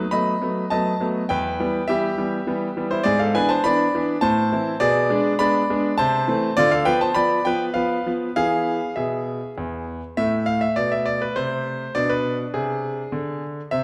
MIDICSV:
0, 0, Header, 1, 2, 480
1, 0, Start_track
1, 0, Key_signature, 1, "minor"
1, 0, Tempo, 587084
1, 1055, Time_signature, 3, 2, 24, 8
1, 2491, Key_signature, 0, "minor"
1, 5374, Tempo, 600000
1, 8254, Tempo, 590551
1, 11232, End_track
2, 0, Start_track
2, 0, Title_t, "Grand piano"
2, 0, Program_c, 0, 0
2, 0, Note_on_c, 0, 71, 89
2, 88, Note_off_c, 0, 71, 0
2, 92, Note_on_c, 0, 83, 97
2, 98, Note_on_c, 0, 54, 51
2, 102, Note_on_c, 0, 57, 50
2, 103, Note_on_c, 0, 75, 72
2, 108, Note_on_c, 0, 59, 52
2, 270, Note_off_c, 0, 54, 0
2, 273, Note_off_c, 0, 57, 0
2, 277, Note_off_c, 0, 59, 0
2, 338, Note_on_c, 0, 54, 49
2, 342, Note_on_c, 0, 57, 48
2, 345, Note_on_c, 0, 59, 53
2, 510, Note_off_c, 0, 54, 0
2, 513, Note_off_c, 0, 57, 0
2, 515, Note_off_c, 0, 59, 0
2, 547, Note_off_c, 0, 75, 0
2, 575, Note_off_c, 0, 83, 0
2, 576, Note_on_c, 0, 81, 94
2, 582, Note_on_c, 0, 75, 72
2, 585, Note_on_c, 0, 54, 47
2, 585, Note_on_c, 0, 57, 50
2, 591, Note_on_c, 0, 59, 57
2, 754, Note_off_c, 0, 54, 0
2, 754, Note_off_c, 0, 57, 0
2, 758, Note_off_c, 0, 59, 0
2, 819, Note_on_c, 0, 54, 51
2, 825, Note_on_c, 0, 59, 55
2, 827, Note_on_c, 0, 57, 49
2, 863, Note_off_c, 0, 81, 0
2, 990, Note_off_c, 0, 54, 0
2, 994, Note_off_c, 0, 59, 0
2, 995, Note_off_c, 0, 57, 0
2, 1025, Note_off_c, 0, 75, 0
2, 1055, Note_on_c, 0, 79, 102
2, 1065, Note_on_c, 0, 40, 70
2, 1068, Note_on_c, 0, 71, 72
2, 1292, Note_off_c, 0, 40, 0
2, 1306, Note_on_c, 0, 52, 52
2, 1308, Note_on_c, 0, 55, 51
2, 1311, Note_on_c, 0, 59, 59
2, 1474, Note_off_c, 0, 52, 0
2, 1475, Note_off_c, 0, 55, 0
2, 1477, Note_off_c, 0, 59, 0
2, 1507, Note_off_c, 0, 71, 0
2, 1533, Note_off_c, 0, 79, 0
2, 1534, Note_on_c, 0, 76, 101
2, 1546, Note_on_c, 0, 52, 52
2, 1548, Note_on_c, 0, 67, 77
2, 1550, Note_on_c, 0, 55, 52
2, 1551, Note_on_c, 0, 59, 55
2, 1713, Note_off_c, 0, 52, 0
2, 1716, Note_off_c, 0, 55, 0
2, 1716, Note_off_c, 0, 59, 0
2, 1778, Note_on_c, 0, 52, 50
2, 1783, Note_on_c, 0, 55, 51
2, 1785, Note_on_c, 0, 59, 54
2, 1948, Note_off_c, 0, 52, 0
2, 1951, Note_off_c, 0, 55, 0
2, 1952, Note_off_c, 0, 59, 0
2, 2018, Note_on_c, 0, 52, 54
2, 2022, Note_on_c, 0, 55, 56
2, 2026, Note_on_c, 0, 59, 59
2, 2188, Note_off_c, 0, 52, 0
2, 2191, Note_off_c, 0, 55, 0
2, 2193, Note_off_c, 0, 59, 0
2, 2263, Note_on_c, 0, 52, 52
2, 2265, Note_on_c, 0, 55, 51
2, 2269, Note_on_c, 0, 59, 58
2, 2346, Note_off_c, 0, 67, 0
2, 2371, Note_off_c, 0, 76, 0
2, 2376, Note_on_c, 0, 72, 87
2, 2387, Note_on_c, 0, 64, 64
2, 2432, Note_off_c, 0, 52, 0
2, 2433, Note_off_c, 0, 55, 0
2, 2436, Note_off_c, 0, 59, 0
2, 2482, Note_on_c, 0, 74, 108
2, 2492, Note_off_c, 0, 64, 0
2, 2494, Note_off_c, 0, 72, 0
2, 2496, Note_on_c, 0, 44, 76
2, 2498, Note_on_c, 0, 68, 81
2, 2607, Note_off_c, 0, 68, 0
2, 2607, Note_off_c, 0, 74, 0
2, 2611, Note_on_c, 0, 77, 87
2, 2623, Note_on_c, 0, 69, 69
2, 2727, Note_off_c, 0, 44, 0
2, 2730, Note_off_c, 0, 69, 0
2, 2732, Note_off_c, 0, 77, 0
2, 2737, Note_on_c, 0, 80, 103
2, 2741, Note_on_c, 0, 52, 53
2, 2741, Note_on_c, 0, 71, 77
2, 2745, Note_on_c, 0, 59, 57
2, 2751, Note_on_c, 0, 62, 63
2, 2849, Note_off_c, 0, 71, 0
2, 2851, Note_on_c, 0, 81, 97
2, 2854, Note_off_c, 0, 80, 0
2, 2864, Note_on_c, 0, 72, 80
2, 2910, Note_off_c, 0, 52, 0
2, 2913, Note_off_c, 0, 59, 0
2, 2917, Note_off_c, 0, 62, 0
2, 2970, Note_off_c, 0, 72, 0
2, 2971, Note_off_c, 0, 81, 0
2, 2975, Note_on_c, 0, 83, 111
2, 2984, Note_on_c, 0, 52, 54
2, 2986, Note_on_c, 0, 59, 57
2, 2989, Note_on_c, 0, 62, 62
2, 2990, Note_on_c, 0, 74, 86
2, 3152, Note_off_c, 0, 52, 0
2, 3154, Note_off_c, 0, 59, 0
2, 3155, Note_off_c, 0, 62, 0
2, 3227, Note_on_c, 0, 52, 55
2, 3230, Note_on_c, 0, 59, 54
2, 3237, Note_on_c, 0, 62, 58
2, 3394, Note_off_c, 0, 52, 0
2, 3395, Note_off_c, 0, 59, 0
2, 3400, Note_off_c, 0, 62, 0
2, 3427, Note_off_c, 0, 74, 0
2, 3444, Note_on_c, 0, 81, 114
2, 3450, Note_on_c, 0, 45, 75
2, 3452, Note_off_c, 0, 83, 0
2, 3452, Note_on_c, 0, 72, 84
2, 3683, Note_off_c, 0, 45, 0
2, 3699, Note_on_c, 0, 60, 58
2, 3701, Note_on_c, 0, 52, 54
2, 3701, Note_on_c, 0, 64, 64
2, 3869, Note_off_c, 0, 60, 0
2, 3870, Note_off_c, 0, 52, 0
2, 3870, Note_off_c, 0, 64, 0
2, 3894, Note_off_c, 0, 81, 0
2, 3899, Note_off_c, 0, 72, 0
2, 3924, Note_on_c, 0, 74, 113
2, 3929, Note_on_c, 0, 47, 80
2, 3934, Note_on_c, 0, 68, 81
2, 4163, Note_off_c, 0, 47, 0
2, 4168, Note_on_c, 0, 56, 57
2, 4170, Note_on_c, 0, 59, 58
2, 4175, Note_on_c, 0, 62, 64
2, 4343, Note_off_c, 0, 56, 0
2, 4344, Note_off_c, 0, 59, 0
2, 4347, Note_off_c, 0, 62, 0
2, 4376, Note_off_c, 0, 74, 0
2, 4381, Note_off_c, 0, 68, 0
2, 4406, Note_on_c, 0, 83, 117
2, 4415, Note_on_c, 0, 74, 82
2, 4417, Note_on_c, 0, 56, 59
2, 4417, Note_on_c, 0, 62, 65
2, 4418, Note_on_c, 0, 59, 59
2, 4588, Note_off_c, 0, 56, 0
2, 4588, Note_off_c, 0, 62, 0
2, 4589, Note_off_c, 0, 59, 0
2, 4661, Note_on_c, 0, 56, 59
2, 4663, Note_on_c, 0, 59, 55
2, 4663, Note_on_c, 0, 62, 63
2, 4830, Note_off_c, 0, 56, 0
2, 4832, Note_off_c, 0, 59, 0
2, 4832, Note_off_c, 0, 62, 0
2, 4860, Note_off_c, 0, 74, 0
2, 4886, Note_on_c, 0, 81, 120
2, 4889, Note_off_c, 0, 83, 0
2, 4895, Note_on_c, 0, 48, 82
2, 4897, Note_on_c, 0, 72, 91
2, 5126, Note_off_c, 0, 48, 0
2, 5133, Note_on_c, 0, 52, 57
2, 5140, Note_on_c, 0, 57, 58
2, 5144, Note_on_c, 0, 60, 67
2, 5306, Note_off_c, 0, 52, 0
2, 5310, Note_off_c, 0, 57, 0
2, 5313, Note_off_c, 0, 60, 0
2, 5336, Note_off_c, 0, 81, 0
2, 5342, Note_off_c, 0, 72, 0
2, 5369, Note_on_c, 0, 74, 122
2, 5376, Note_on_c, 0, 50, 79
2, 5381, Note_on_c, 0, 65, 92
2, 5487, Note_off_c, 0, 65, 0
2, 5487, Note_on_c, 0, 77, 100
2, 5488, Note_off_c, 0, 74, 0
2, 5494, Note_on_c, 0, 69, 74
2, 5598, Note_on_c, 0, 79, 113
2, 5602, Note_off_c, 0, 69, 0
2, 5602, Note_on_c, 0, 71, 83
2, 5604, Note_off_c, 0, 50, 0
2, 5604, Note_on_c, 0, 53, 61
2, 5607, Note_off_c, 0, 77, 0
2, 5609, Note_on_c, 0, 59, 65
2, 5715, Note_off_c, 0, 71, 0
2, 5722, Note_off_c, 0, 79, 0
2, 5725, Note_on_c, 0, 81, 99
2, 5735, Note_on_c, 0, 72, 74
2, 5777, Note_off_c, 0, 53, 0
2, 5779, Note_off_c, 0, 59, 0
2, 5832, Note_on_c, 0, 83, 111
2, 5841, Note_off_c, 0, 72, 0
2, 5842, Note_on_c, 0, 53, 53
2, 5843, Note_on_c, 0, 59, 61
2, 5843, Note_on_c, 0, 74, 82
2, 5844, Note_off_c, 0, 81, 0
2, 6014, Note_off_c, 0, 53, 0
2, 6015, Note_off_c, 0, 59, 0
2, 6065, Note_off_c, 0, 74, 0
2, 6075, Note_on_c, 0, 79, 100
2, 6076, Note_off_c, 0, 83, 0
2, 6085, Note_on_c, 0, 53, 57
2, 6090, Note_on_c, 0, 71, 81
2, 6091, Note_on_c, 0, 59, 63
2, 6220, Note_off_c, 0, 79, 0
2, 6255, Note_off_c, 0, 53, 0
2, 6259, Note_off_c, 0, 59, 0
2, 6305, Note_on_c, 0, 77, 84
2, 6307, Note_off_c, 0, 71, 0
2, 6318, Note_on_c, 0, 53, 56
2, 6318, Note_on_c, 0, 59, 58
2, 6319, Note_on_c, 0, 71, 64
2, 6491, Note_off_c, 0, 53, 0
2, 6492, Note_off_c, 0, 59, 0
2, 6567, Note_on_c, 0, 53, 54
2, 6570, Note_on_c, 0, 59, 57
2, 6599, Note_off_c, 0, 77, 0
2, 6739, Note_off_c, 0, 53, 0
2, 6741, Note_off_c, 0, 59, 0
2, 6770, Note_off_c, 0, 71, 0
2, 6805, Note_on_c, 0, 77, 109
2, 6809, Note_on_c, 0, 52, 69
2, 6809, Note_on_c, 0, 59, 53
2, 6809, Note_on_c, 0, 68, 86
2, 7146, Note_off_c, 0, 52, 0
2, 7196, Note_off_c, 0, 59, 0
2, 7256, Note_off_c, 0, 77, 0
2, 7258, Note_off_c, 0, 68, 0
2, 7281, Note_on_c, 0, 76, 76
2, 7290, Note_on_c, 0, 47, 59
2, 7293, Note_on_c, 0, 68, 57
2, 7627, Note_off_c, 0, 47, 0
2, 7718, Note_off_c, 0, 76, 0
2, 7777, Note_on_c, 0, 40, 63
2, 7983, Note_off_c, 0, 68, 0
2, 8112, Note_off_c, 0, 40, 0
2, 8254, Note_on_c, 0, 76, 102
2, 8256, Note_on_c, 0, 45, 69
2, 8257, Note_on_c, 0, 57, 48
2, 8488, Note_on_c, 0, 77, 96
2, 8494, Note_off_c, 0, 76, 0
2, 8609, Note_on_c, 0, 76, 89
2, 8611, Note_off_c, 0, 77, 0
2, 8641, Note_off_c, 0, 45, 0
2, 8732, Note_off_c, 0, 76, 0
2, 8732, Note_on_c, 0, 74, 94
2, 8740, Note_on_c, 0, 47, 61
2, 8854, Note_off_c, 0, 74, 0
2, 8858, Note_on_c, 0, 76, 84
2, 8971, Note_on_c, 0, 74, 90
2, 8977, Note_off_c, 0, 76, 0
2, 9094, Note_off_c, 0, 74, 0
2, 9102, Note_on_c, 0, 71, 78
2, 9124, Note_off_c, 0, 47, 0
2, 9217, Note_on_c, 0, 72, 95
2, 9220, Note_off_c, 0, 71, 0
2, 9224, Note_on_c, 0, 48, 60
2, 9607, Note_off_c, 0, 48, 0
2, 9668, Note_off_c, 0, 57, 0
2, 9696, Note_on_c, 0, 74, 103
2, 9699, Note_off_c, 0, 72, 0
2, 9702, Note_on_c, 0, 62, 47
2, 9703, Note_on_c, 0, 47, 68
2, 9817, Note_on_c, 0, 71, 81
2, 9818, Note_off_c, 0, 74, 0
2, 10035, Note_off_c, 0, 71, 0
2, 10087, Note_off_c, 0, 47, 0
2, 10176, Note_on_c, 0, 68, 77
2, 10178, Note_on_c, 0, 48, 64
2, 10562, Note_off_c, 0, 48, 0
2, 10652, Note_on_c, 0, 50, 59
2, 10895, Note_off_c, 0, 68, 0
2, 11034, Note_off_c, 0, 50, 0
2, 11103, Note_off_c, 0, 62, 0
2, 11131, Note_on_c, 0, 76, 96
2, 11136, Note_on_c, 0, 60, 46
2, 11137, Note_on_c, 0, 48, 64
2, 11232, Note_off_c, 0, 48, 0
2, 11232, Note_off_c, 0, 60, 0
2, 11232, Note_off_c, 0, 76, 0
2, 11232, End_track
0, 0, End_of_file